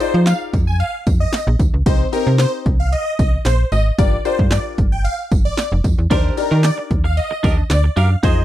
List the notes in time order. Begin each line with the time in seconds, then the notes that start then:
0.00 D#4 F4 G#4 C5 D5, closed hi-hat, tambourine
0.14 F3
0.26 F5, snare, clap, closed hi-hat, tambourine
0.53 F2, kick, closed hi-hat, tambourine
0.67 G#5
0.80 F5, closed hi-hat
1.07 F2, kick, closed hi-hat, tambourine
1.20 D#5
1.33 snare, clap, closed hi-hat, tambourine
1.47 A#1
1.59 D2, kick, closed hi-hat, tambourine
1.74 C#2
1.86 C2 C4 D#4 G4 C5 D#5, kick, closed hi-hat, tambourine
2.12 C4 D#4 G4 A#4 C5 D#5, closed hi-hat, tambourine
2.27 C3
2.38 C5, snare, clap, closed hi-hat, tambourine
2.66 C2, kick, closed hi-hat
2.80 F5
2.92 D#5, closed hi-hat
3.19 C2 D#5, kick, closed hi-hat, tambourine
3.45 A#1 C5, snare, clap, closed hi-hat, tambourine
3.72 G#1 D#5, closed hi-hat, tambourine
3.98 G1 D4 F4 G4 A#4 D5, kick, closed hi-hat, tambourine
4.25 D4 F4 G4 A#4 C5 D5, closed hi-hat, tambourine
4.39 G2, kick
4.51 D5, snare, clap, closed hi-hat, tambourine
4.78 G1, kick, closed hi-hat
4.92 G5
5.04 F5, closed hi-hat
5.31 G1, kick, closed hi-hat, tambourine
5.45 D5
5.57 snare, clap, closed hi-hat, tambourine
5.72 F1
5.84 F2, kick, closed hi-hat, tambourine
5.98 E2
6.10 D#2 D4 D#4 G4 A#4 C5 D5, kick, closed hi-hat, tambourine
6.37 D4 D#4 G4 A#4 D5, muted clean electric guitar stroke, closed hi-hat, tambourine
6.51 D#3 D4 G4 A#4
6.63 D5, muted clean electric guitar stroke, snare, clap, closed hi-hat, tambourine
6.78 muted clean electric guitar stroke
6.91 D#2, kick, closed hi-hat
7.04 F5, muted clean electric guitar stroke
7.17 D#5, closed hi-hat, tambourine
7.31 muted clean electric guitar stroke
7.43 D#2 D4 G4 A#4 D#5, kick, closed hi-hat, tambourine
7.57 muted clean electric guitar stroke
7.70 D2 D5, snare, clap, closed hi-hat, tambourine
7.84 muted clean electric guitar stroke
7.96 F#2 D4 G4 A#4 F5, closed hi-hat, tambourine
8.11 muted clean electric guitar stroke
8.23 F2 D#4 F4 G#4 C5 D#5, kick, closed hi-hat, tambourine